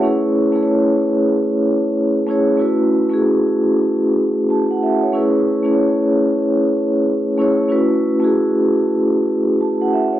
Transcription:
vibraphone
Already playing: C#5
0.02 A3 C#4 E4 G#4
0.06 B4
0.52 A3 C#4 E4 G#4
0.56 B4
0.63 C#5
2.27 A3 C#4 E4 G#4
2.31 C#5
2.57 A3 C#4 E4 F#4
2.61 B4
3.09 A3 C#4 E4 F#4
3.14 G#4
4.50 A5
4.71 F#5
4.83 E5
5.02 C#5
5.12 A3 C#4 E4 G#4
5.17 B4
5.63 A3 C#4 E4 G#4
5.67 B4
5.74 C#5
7.38 A3 C#4 E4 G#4
7.42 C#5
7.68 A3 C#4 E4 F#4
7.72 B4
8.20 A3 C#4 E4 F#4
8.24 G#4
9.61 A5
9.82 F#5
9.94 E5
10.13 C#5

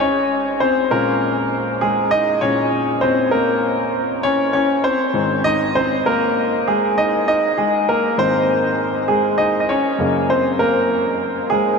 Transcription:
grand piano
0.00 C#4 C#5
0.60 C4 C5
0.91 A#2 G#3 A#3 C#4 A#4
1.81 G#3 G#4
2.11 D#4 D#5
2.41 A#2 G#3 C#4 C#5
3.01 C4 C5
3.31 A#3 A#4
4.23 C#4 C#5
4.53 C#4 C#5
4.84 C4 C5
5.14 G#2 D#3 C4
5.44 D#4 D#5
5.75 C4 C5
6.06 A#3 A#4
6.68 G#3 G#4
6.98 D#4 D#5
7.28 D#4 D#5
7.58 G#3 G#4
7.89 A#3 A#4
8.18 G#2 D#3 C4 C5
9.08 G#3 G#4
9.38 D#4 D#5
9.60 D#5
9.69 C#4 C#5
9.99 F#2 C#3 A#3
10.30 C4 C5
10.59 A#3 A#4
11.50 G#3 G#4

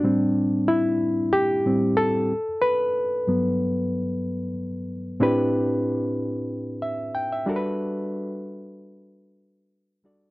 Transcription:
reed electric piano
Already playing: D4
0.03 A2 G3 C4
0.68 E4
1.33 G4
1.66 A2 G3 C4
1.97 A4
2.62 B4
3.27 G2 F#3 B3
5.20 A2 C4 D4 E4 G4 B4
6.82 E5
7.15 G5
7.32 E5
7.46 G3 D4 F#4 A4 A#4
7.56 B4
10.04 G3 D4 F#4 A4 D5

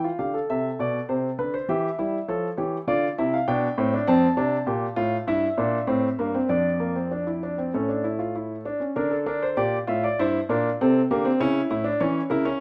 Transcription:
grand piano
0.04 F4
0.19 D3 G4 F5
0.34 A4
0.50 C3 E5
0.79 B2 D5
1.09 C3 C5
1.39 D3 B4
1.54 C5
1.69 E3 G4 E5
1.99 G3 E4
2.28 F3 A4 C#5
2.57 E3 G4 C#5
2.87 D3 F4 D5
3.18 C3 E4 E5
3.34 F5
3.48 B2 D4 G5
3.78 A2 C4
3.94 D4
4.07 F2 C4 A5
4.37 C3 D4
4.66 A#2 G4
4.96 A2 F4
5.27 G2 E4 E5
5.58 A#2 D4
5.87 A2 C4
6.19 G2 A#3
6.35 C4
6.49 F2 D4 D5
6.80 A#3
6.96 C4
7.11 D4
7.27 E4
7.43 D4
7.58 C4
7.74 A2 C#4 A4
7.89 D4
8.04 E4
8.19 F4
8.35 E4
8.65 D4
8.80 C#4
8.96 D3 D4 A#4
9.11 A4
9.26 D4 A#4
9.42 C5
9.57 A#2 G4 D5
9.87 A2 F4 E5
10.04 D5
10.19 G2 E4 C5
10.49 A#2 D4 A#4
10.81 C3 C4 A4
11.11 D3 A#3 G4
11.25 C4
11.40 C#3 C#4 E4
11.71 A2 E4
11.84 D4
12.00 E3 C#4 C#5
12.30 C#3 E4 A#4
12.45 C#4

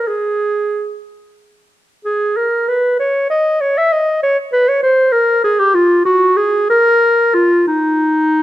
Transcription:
clarinet
0.08 G#4
2.05 G#4
2.37 A#4
2.68 B4
2.99 C#5
3.30 D#5
3.61 C#5
3.78 E5
3.92 D#5
4.23 C#5
4.53 B4
4.69 C#5
4.83 C5
5.12 A#4
5.44 G#4
5.60 G4
5.75 F4
6.05 F#4
6.37 G#4
6.70 A#4
7.35 F4
7.67 D#4

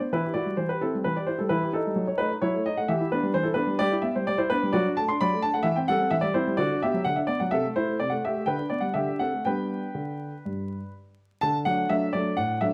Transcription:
grand piano
0.00 B3 C5
0.12 E3 E4 B4
0.25 G4
0.34 E4 F#4 D5
0.46 G3
0.57 E3 C5
0.69 G4 B4
0.81 C4 E4 A4
0.95 G3
1.04 E3 B4
1.16 G4 D5
1.26 E4 C5
1.39 G3 A4
1.49 E3 E4 B4
1.63 G4
1.73 D#4 E4 A4
1.86 G3
1.96 F#3
2.07 D#4 C#5
2.18 A3 D#4 B4
2.42 F#3 E4 C#5
2.55 A3
2.66 D#4 D#5
2.77 A3 F#5
2.88 E3 G4 E5
3.01 E4
3.12 B3 D4 B4
3.23 G3
3.34 E3 C5
3.43 E4 A4
3.54 B3 D4 B4
3.67 G3
3.79 G3 G4 D5
3.92 E4
4.02 B3 E5
4.16 G3 C5
4.27 G3 D5
4.38 E4 C5
4.50 B3 D4 B4
4.63 G3
4.73 F#3 F#4 D5
4.86 D4
4.97 A3 A5
5.08 D4 C6
5.21 F#3 D5 B5
5.33 A3
5.42 D4 A5
5.54 A3 F#5
5.63 E3 E5
5.76 C4 G5
5.88 G3 A4 F#5
6.00 C4
6.11 E3 E5
6.21 G3 D5
6.34 C4 E4 C5
6.47 G3
6.57 D3 F#4 D5
6.71 D4
6.82 B3 G4 E5
6.94 F#3
7.04 D3 F#5
7.16 D4 E5
7.27 B3 D5
7.40 F#3 F#5
7.51 C3 A4 E5
7.64 A3
7.76 A3 E4 C5
7.88 A3
8.00 C3 D5
8.10 A3 F#5
8.25 A3 G4 E5
8.36 A3
8.46 D3 B4 G5
8.58 D4
8.70 B3 D5
8.80 G3 F#5
8.94 D3 G4 E5
9.08 D4
9.19 C4 A4 F#5
9.33 A3
9.45 G3 B3 D4 B4 G5
9.95 D3
10.45 G2
11.41 D3 A5
11.65 F#3 A3 D4 F#5
11.89 F#3 A3 D4 E5
12.13 F#3 A3 D4 D5
12.37 A2 F#5
12.61 F#3 A3 D4 E5

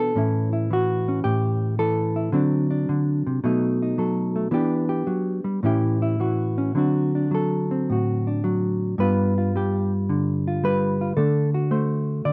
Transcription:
hollow-body jazz guitar
Already playing: B2 E3 B3 D4
0.00 A4
0.15 A2 E3 C#4 E4
0.53 E4
0.71 E3 F#4
1.08 C#4
1.24 A2 G4
1.79 E3 A4
2.16 E4
2.32 D3 F#3 C4 D4
2.71 D4
2.89 D3
3.27 C3
3.44 B2 F#3 A3 D#4
3.82 D#4
3.98 F#3 A4
4.36 A3
4.51 E3 B3 D4 G4
4.89 G4
5.07 F#3
5.44 G3
5.63 A2 E3 C#4 E4 G4
6.02 E4
6.20 E3 F#4
6.58 C#4
6.75 D3 F#3 C4 D4 F#4
7.15 D4
7.31 F#3 A4
7.71 C4
7.90 A2 F#4
8.27 D4
8.44 F#3
8.98 G2 G3 B3 F4 B4
9.38 F4
9.56 G3 G4
10.09 D3
10.48 F4
10.64 G3 B4
11.01 F4
11.17 D3 A3 D4 A4
11.54 F#4
11.71 A3 C5
12.25 D3 D5

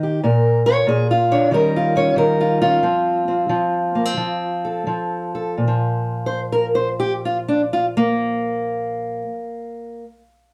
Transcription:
steel-string acoustic guitar
Already playing: D#3 D#4
0.03 G4
0.23 A#2 A#4
0.66 F4 C#5
0.87 A#2 G#4
1.11 F4
1.31 D4 C#5
1.51 D#3 G3 C#4 G4 A#4
1.76 F4
1.96 C#4 C#5
2.16 D#3 A#4
2.41 F4
2.62 C#4 F4
2.83 F3 C4
3.28 C4
3.49 F3
3.95 A#3
4.05 C4
4.17 F3
4.65 A4
4.87 F3
5.35 A4
5.57 A#2
5.68 F3
6.26 C5
6.52 A#4
6.75 C5
7.00 G4
7.25 F4
7.48 D4
7.73 F4
7.97 A#3

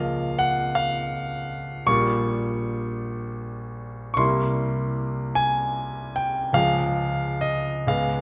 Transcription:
grand piano
Already playing: C#2 F3 A#3 F4 F5
0.39 F#5
0.75 F5
1.86 A#1 G3 A#3 F4 C#6
4.14 C2 G3 C6 C#6
4.18 A#3 E4
5.35 G#5
6.16 G5
6.53 C#2 F3 G#3 G#4 F5
7.41 D#5
7.87 C#2 G#3 B3 G#4 F5

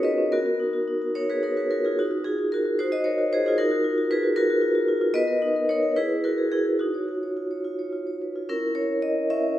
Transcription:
vibraphone
Already playing: B3 C#4 D#4 F4 F#4 G#4 A#4 B4 C#5
0.03 C#4 B4 D#5
0.18 C#4
0.32 B3 F#4 A#4
0.46 F#4
0.60 D#4
0.73 F#4
0.88 D#4
1.02 F#4
1.15 D#4 A#4 C#5
1.29 F#4 G#4 B4
1.43 D#4 A#4 C#5
1.57 F#4 G#4 B4
1.71 F4 F#4 A#4
1.84 D#4 F4 G#4
1.99 D#4 F#4
2.11 F#4
2.24 D#4 F4 G#4
2.38 F#4
2.52 D#4 F#4 A#4
2.65 F#4
2.79 D#4 F#4 C5
2.92 F#4 C5 D#5
3.04 D#4 A#4 C#5
3.18 F#4
3.33 F4 G#4 C5
3.46 D#4 F4 G#4
3.58 D#4 F#4 A#4
3.71 F#4
3.84 F4
3.98 F#4
4.11 F4 G#4 B4
4.23 F#4
4.36 F4 F#4 A#4
4.50 F#4
4.62 F4
4.75 F#4
4.88 F4
5.01 F4
5.14 B3 B4 D#5
5.28 A#4
5.42 D#4
5.56 A#4
5.69 D#4 A#4 C#5
5.83 A#4
5.96 E4 G#4 B4
6.09 G#4
6.24 E4 F#4 A#4
6.38 G#4
6.52 E4 G#4
6.66 G#4
6.79 D#4 F#4
6.94 C#5
7.08 F4
7.23 C#5
7.37 F4
7.51 C#5
7.64 F4
7.79 C#5
7.93 F4
8.07 C#5
8.22 B4
8.36 F4
8.49 C#4 E4 A#4
8.75 C#5
9.02 D#5
9.30 C#4 E4 A#4 E5

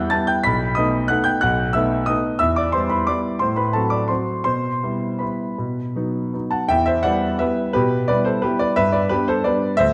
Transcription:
grand piano
Already playing: E2 G3 B3 E4 F#5 G5 F#6 G6
0.10 G3 B3 E4 A5 A6
0.27 G5 G6
0.44 B1 B5 B6
0.75 A3 B3 D#4 D#5 D#6
1.08 A3 B3 D#4 F#5 F#6
1.24 G5 G6
1.41 B1 F#5 F#6
1.73 A3 B3 D#4 E5 E6
2.06 A3 B3 D#4 D#5 D#6
2.39 E2 E5 E6
2.56 D5 D6
2.72 G3 B3 E4 C5 C6
2.90 B4 B5
3.07 G3 B3 E4 D5 D6
3.39 A2 C5 C6
3.56 B4 B5
3.73 F#3 C4 F#4 A4 A5
3.90 D5 D6
4.08 F#3 C4 F#4 C5 C6
4.44 B2 C5 C6
4.83 G3 B3 E4
5.19 G3 B3 E4 B4 B5
5.58 B2
5.96 F#3 B3 D#4
6.33 F#3 B3 D#4
6.51 F#5 A5
6.69 E2 E5 G5
6.86 C5 E5
7.03 G3 B3 E4 D5 F#5
7.39 G3 B3 E4 B4 E5
7.73 B2 G4 B4
8.08 G3 B3 E4 B4 D5
8.25 A4 C5
8.42 G3 B3 E4 G4 B4
8.59 B4 D5
8.76 G2 B4 E5
8.92 B4 D5
9.09 G3 B3 D4 G4 B4
9.28 A4 C5
9.44 G3 B3 D4 B4 D5
9.77 D2 C5 E5

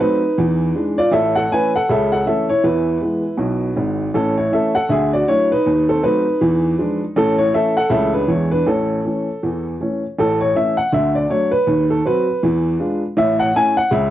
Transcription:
upright piano
0.00 F#3 A3 C4 D#4 B4
0.38 E2 E3
0.75 E3 G#3 D4
0.98 F4 D5
1.11 A1 A2 A4 E5
1.35 A4 F#5
1.52 E3 A3 C#4 B4 G#5
1.76 A4 F#5
1.89 C#2 C#3 A4 E5
2.12 A4 F#5
2.26 E3 A3 C#4 A4 E5
2.49 E4 C#5
2.64 E2 E3 E4 B4
3.01 E3 G#3 B3
3.37 B1 B2
3.76 G#1 G#2
4.14 A1 A2 C#4 A4
4.37 E4 C#5
4.52 E3 A3 C#4 A4 E5
4.75 A4 F#5
4.89 D2 D3 G#4 E5
5.13 F#4 D5
5.28 F#3 A3 D4 E4 C#5
5.52 D#4 B4
5.66 D#2 D#3
5.89 C4 A4
6.03 F#3 A3 C4 D#4 B4
6.41 E2 E3
6.79 F3 G#3 D4
7.16 A1 A2 C#4 A4
7.38 E4 C#5
7.53 E3 A3 C#4 A4 E5
7.77 A4 F#5
7.90 C#2 C#3 E3 A3 C#4 A4 E5
8.14 D4 B4
8.27 E2 E3 G#3 D4 E4 C#5
8.51 D4 B4
8.67 A1 A2 C#4 A4
9.05 E3 A3 C#4
9.43 E2 E3
9.81 E3 A3 C#4
10.19 A1 A2 A4
10.41 C#5
10.55 E3 A3 C#4 E5
10.77 F#5
10.92 D2 D3 E5
11.15 D5
11.30 F#3 A3 D4 C#5
11.51 B4
11.67 D#2 D#3
11.90 A4
12.05 F#3 C4 F#4 B4
12.43 E2 E3
12.80 G#3 D4 F4
13.17 A1 A2 E5
13.40 F#5
13.54 A3 C#4 E4 G#5
13.77 F#5
13.91 C#2 C#3 E5

